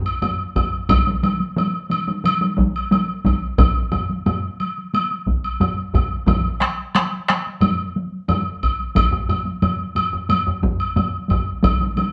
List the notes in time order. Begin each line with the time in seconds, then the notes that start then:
0.05 taiko high, high woodblock
0.22 taiko low-mid, taiko high, high woodblock
0.39 taiko high
0.55 taiko, taiko low-mid, taiko high, high woodblock
0.72 taiko high
0.89 taiko, taiko mid, taiko high, high woodblock
1.07 taiko mid, taiko high
1.23 taiko mid, taiko high, high woodblock
1.40 taiko high
1.56 taiko mid, taiko high, high woodblock
1.73 taiko high
1.90 taiko mid, taiko high, high woodblock
2.07 taiko mid, taiko high
2.24 taiko mid, taiko high, high woodblock
2.41 taiko mid, taiko high
2.58 taiko, taiko mid, taiko high
2.75 taiko high, high woodblock
2.91 taiko mid, taiko high, high woodblock
3.09 taiko high
3.24 taiko, taiko mid, taiko high, high woodblock
3.43 taiko high
3.58 taiko, taiko high, high woodblock
3.75 taiko high
3.92 taiko low-mid, taiko high, high woodblock
4.09 taiko high
4.26 taiko low-mid, taiko high, high woodblock
4.43 taiko high
4.60 taiko high, high woodblock
4.78 taiko high
4.94 taiko high, high woodblock
5.11 taiko high
5.26 taiko, taiko high
5.44 taiko high, high woodblock
5.60 taiko low-mid, taiko high, high woodblock
5.76 taiko high
5.93 taiko, taiko low-mid, taiko high, high woodblock
6.11 taiko high
6.27 taiko, taiko low-mid, taiko mid, taiko high, high woodblock
6.45 taiko high
6.61 taiko rim, taiko high, high woodblock
6.95 taiko rim, taiko high, high woodblock
7.13 taiko high
7.28 taiko rim, taiko high, high woodblock
7.47 taiko high
7.61 taiko low-mid, taiko mid, taiko high, high woodblock
7.80 taiko high
7.96 taiko high
8.12 taiko high
8.29 taiko low-mid, taiko mid, taiko high, high woodblock
8.47 taiko high
8.63 taiko, high woodblock
8.80 taiko high
8.96 taiko, taiko low-mid, taiko high, high woodblock
9.12 taiko low-mid, taiko high
9.29 taiko low-mid, taiko high, high woodblock
9.46 taiko high
9.62 taiko low-mid, taiko high, high woodblock
9.79 taiko high
9.95 taiko low-mid, taiko high, high woodblock
10.13 taiko low-mid, taiko high
10.29 taiko low-mid, taiko high, high woodblock
10.47 taiko low-mid, taiko high
10.62 taiko, taiko low-mid, taiko high
10.79 taiko high, high woodblock
10.96 taiko low-mid, taiko high, high woodblock
11.13 taiko high
11.29 taiko, taiko low-mid, taiko high, high woodblock
11.46 taiko high
11.63 taiko, taiko mid, taiko high, high woodblock
11.80 taiko mid, taiko high
11.96 taiko mid, taiko high, high woodblock